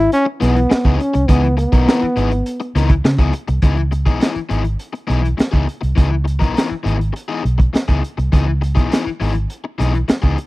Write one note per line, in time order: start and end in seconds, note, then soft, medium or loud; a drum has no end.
0.00 0.13 E4 loud
0.12 0.26 C#4 loud
0.12 closed hi-hat medium
0.26 muted overdriven electric guitar stroke soft
0.40 0.66 B1 loud
0.40 0.58 E3 medium
0.40 0.55 B3 medium
0.40 1.01 B3 medium
0.40 0.55 D#4 medium
0.40 0.54 G#4 loud
0.40 snare soft
0.40 closed hi-hat medium
0.55 muted overdriven electric guitar stroke soft
0.55 closed hi-hat soft
0.70 muted overdriven electric guitar stroke medium
0.70 muted fingered electric bass stroke soft
0.70 snare loud
0.85 0.97 C#2 medium
0.85 0.99 E3 medium
0.85 0.99 B3 medium
0.85 0.99 D#4 medium
0.85 1.00 G#4 medium
0.85 kick loud
0.85 closed hi-hat soft
0.99 1.30 C#4 medium
0.99 muted overdriven electric guitar stroke soft
0.99 closed hi-hat medium
1.14 1.27 C2 medium
1.14 muted overdriven electric guitar stroke medium
1.14 closed hi-hat medium
1.29 1.65 C#2 loud
1.29 1.46 E3 medium
1.29 1.58 B3 medium
1.29 1.43 B3 loud
1.29 1.43 D#4 loud
1.29 1.42 G#4 medium
1.29 kick loud
1.29 closed hi-hat medium
1.43 muted overdriven electric guitar stroke soft
1.43 closed hi-hat soft
1.57 2.71 B3 medium
1.57 muted overdriven electric guitar stroke soft
1.57 closed hi-hat medium
1.72 1.85 B1 medium
1.72 1.86 E3 soft
1.72 1.87 B3 medium
1.72 1.86 D#4 medium
1.72 1.86 A#4 medium
1.72 kick medium
1.72 closed hi-hat soft
1.87 2.05 E3 medium
1.87 2.02 B3 medium
1.87 2.02 D#4 medium
1.87 2.02 A#4 loud
1.87 snare loud
2.02 muted overdriven electric guitar stroke medium
2.02 muted fingered electric bass stroke soft
2.16 2.41 G#1 medium
2.16 2.30 E3 medium
2.16 2.30 B3 medium
2.16 2.31 D#4 medium
2.16 2.30 G#4 medium
2.16 closed hi-hat medium
2.31 muted overdriven electric guitar stroke soft
2.31 closed hi-hat soft
2.46 closed hi-hat medium
2.60 muted overdriven electric guitar stroke soft
2.60 closed hi-hat soft
2.75 2.99 C#2 medium
2.75 2.93 E3 medium
2.75 2.90 B3 medium
2.75 2.90 D#4 medium
2.75 2.90 A#4 medium
2.75 snare soft
2.75 closed hi-hat medium
2.90 muted overdriven electric guitar stroke soft
2.90 kick loud
2.90 closed hi-hat soft
3.05 3.17 C#3 loud
3.05 muted overdriven electric guitar stroke soft
3.05 snare loud
3.19 3.31 C#2 medium
3.19 3.32 E3 medium
3.19 3.32 B3 medium
3.19 3.32 D#4 medium
3.19 3.33 G#4 medium
3.19 kick medium
3.19 closed hi-hat soft
3.33 muted overdriven electric guitar stroke soft
3.33 closed hi-hat medium
3.48 3.61 C2 medium
3.48 muted overdriven electric guitar stroke soft
3.48 closed hi-hat medium
3.62 4.07 C#2 medium
3.62 3.80 E3 medium
3.62 3.77 B3 medium
3.62 3.76 D#4 medium
3.62 3.76 G#4 medium
3.62 kick loud
3.62 closed hi-hat medium
3.77 muted overdriven electric guitar stroke soft
3.77 closed hi-hat soft
3.91 muted overdriven electric guitar stroke soft
3.91 closed hi-hat medium
4.06 4.19 B1 medium
4.06 4.18 E3 soft
4.06 4.19 B3 soft
4.06 4.19 D#4 medium
4.06 4.20 G#4 medium
4.06 kick medium
4.06 closed hi-hat soft
4.20 4.38 E3 medium
4.20 4.34 B3 medium
4.20 4.33 D#4 medium
4.20 4.33 G#4 medium
4.20 snare loud
4.20 closed hi-hat medium
4.34 muted overdriven electric guitar stroke soft
4.34 muted fingered electric bass stroke soft
4.34 closed hi-hat soft
4.49 4.75 G#1 medium
4.49 4.64 E3 medium
4.49 4.63 B3 medium
4.49 4.63 D#4 medium
4.49 4.62 G#4 medium
4.49 closed hi-hat medium
4.63 muted overdriven electric guitar stroke soft
4.63 closed hi-hat medium
4.79 closed hi-hat medium
4.93 muted overdriven electric guitar stroke soft
4.93 closed hi-hat soft
5.07 5.34 B1 medium
5.07 5.26 E3 medium
5.07 5.22 B3 medium
5.07 5.21 D#4 medium
5.07 5.21 G#4 medium
5.07 closed hi-hat medium
5.22 muted overdriven electric guitar stroke soft
5.22 closed hi-hat soft
5.37 muted overdriven electric guitar stroke soft
5.37 muted fingered electric bass stroke soft
5.37 snare medium
5.37 closed hi-hat medium
5.51 5.66 C#2 medium
5.51 5.65 E3 medium
5.51 5.66 B3 medium
5.51 5.66 D#4 medium
5.51 5.66 G#4 medium
5.51 kick medium
5.67 muted overdriven electric guitar stroke soft
5.67 closed hi-hat medium
5.81 5.95 C2 medium
5.81 muted overdriven electric guitar stroke soft
5.81 closed hi-hat medium
5.96 6.42 C#2 medium
5.96 6.14 E3 medium
5.96 6.10 B3 medium
5.96 6.09 D#4 medium
5.96 6.09 G#4 medium
5.96 kick loud
5.96 closed hi-hat medium
6.10 muted overdriven electric guitar stroke soft
6.24 muted overdriven electric guitar stroke soft
6.24 closed hi-hat medium
6.39 6.54 B1 medium
6.39 6.52 E3 soft
6.39 6.53 B3 medium
6.39 6.53 D#4 medium
6.39 6.54 A#4 medium
6.39 kick medium
6.39 closed hi-hat soft
6.54 6.73 E3 medium
6.54 6.69 B3 medium
6.54 6.69 D#4 medium
6.54 6.69 A#4 medium
6.54 closed hi-hat medium
6.58 snare loud
6.69 muted overdriven electric guitar stroke soft
6.69 muted fingered electric bass stroke soft
6.83 7.10 G#1 medium
6.83 6.98 E3 medium
6.83 6.98 B3 medium
6.83 6.98 D#4 medium
6.83 6.97 G#4 medium
6.83 closed hi-hat medium
6.98 muted overdriven electric guitar stroke soft
6.98 closed hi-hat soft
7.13 muted overdriven electric guitar stroke soft
7.13 closed hi-hat medium
7.28 7.42 E3 medium
7.28 7.43 B3 medium
7.28 7.43 D#4 medium
7.28 7.43 G#4 medium
7.43 7.69 B1 medium
7.43 muted overdriven electric guitar stroke soft
7.43 closed hi-hat medium
7.58 muted overdriven electric guitar stroke soft
7.58 kick medium
7.58 closed hi-hat soft
7.73 muted overdriven electric guitar stroke soft
7.73 muted fingered electric bass stroke soft
7.73 snare loud
7.73 closed hi-hat medium
7.88 8.01 C#2 medium
7.88 8.01 E3 medium
7.88 8.01 B3 medium
7.88 8.02 D#4 medium
7.88 8.02 G#4 medium
7.88 kick medium
7.88 closed hi-hat soft
8.02 muted overdriven electric guitar stroke soft
8.02 closed hi-hat medium
8.18 8.30 C2 medium
8.18 muted overdriven electric guitar stroke soft
8.18 closed hi-hat medium
8.32 8.77 C#2 loud
8.32 8.50 E3 medium
8.32 8.46 B3 medium
8.32 8.46 D#4 medium
8.32 8.46 G#4 medium
8.32 kick loud
8.32 closed hi-hat medium
8.47 muted overdriven electric guitar stroke soft
8.62 muted overdriven electric guitar stroke soft
8.62 closed hi-hat medium
8.75 8.89 B1 medium
8.75 8.89 E3 medium
8.75 8.90 B3 medium
8.75 8.90 D#4 medium
8.75 8.90 G#4 medium
8.75 kick medium
8.75 closed hi-hat soft
8.90 9.08 E3 medium
8.90 9.05 B3 medium
8.90 9.04 D#4 medium
8.90 9.04 G#4 medium
8.90 snare loud
8.90 closed hi-hat loud
9.05 muted overdriven electric guitar stroke soft
9.05 muted fingered electric bass stroke soft
9.20 9.45 G#1 medium
9.20 9.34 E3 medium
9.20 9.34 B3 medium
9.20 9.33 D#4 medium
9.20 9.33 G#4 medium
9.20 open hi-hat medium
9.34 muted overdriven electric guitar stroke soft
9.34 closed hi-hat medium
9.50 closed hi-hat medium
9.64 muted overdriven electric guitar stroke soft
9.78 10.04 B1 medium
9.78 9.97 E3 medium
9.78 9.94 B3 medium
9.78 9.93 D#4 medium
9.78 9.93 G#4 medium
9.78 snare soft
9.78 closed hi-hat medium
9.94 muted overdriven electric guitar stroke soft
9.94 closed hi-hat soft
10.08 muted overdriven electric guitar stroke soft
10.08 muted fingered electric bass stroke soft
10.08 snare loud
10.08 closed hi-hat medium
10.22 10.36 C#2 medium
10.22 10.36 E3 medium
10.22 10.37 B3 medium
10.22 10.37 D#4 medium
10.22 10.38 G#4 medium
10.22 kick medium
10.38 muted overdriven electric guitar stroke soft
10.38 closed hi-hat medium